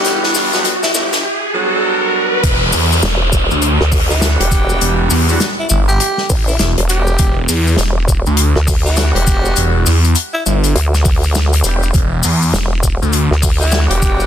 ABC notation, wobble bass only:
X:1
M:4/4
L:1/16
Q:"Swing 16ths" 1/4=101
K:Em
V:1 name="Wobble bass" clef=bass
z16 | z4 E,,,3 z2 D,,4 E,,,3 | z8 z2 A,,,2 z E,,,3 | z4 E,,,3 z2 D,,4 E,,,3 |
z8 D,,6 E,,,2 | z4 E,,,3 z2 D,,4 E,,,3 |]